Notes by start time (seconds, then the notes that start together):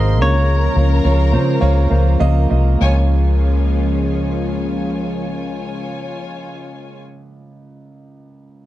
Already playing: G#1 G#2 C3 D#3 G#3 A#3 D#4 G#4 A#4 C5 D#5 C6
0.20 C#2 C#3 F3 A#3 F4 A#4 C#5 A#5
0.76 C#2 A#3 F4 C#5
1.04 C#2 A#3 F4 C#5
1.32 C#3 A#3 F4 C5
1.61 C#2 A#3 F4 C#5
1.90 C#2 A#3 F4 C5
2.19 C#2 A#3 F4 D#5
2.50 C2 A#3 F4 D#5
2.79 C#2 C#3 F3 G#3 A#3 F4 C#5 G#5
2.83 C#5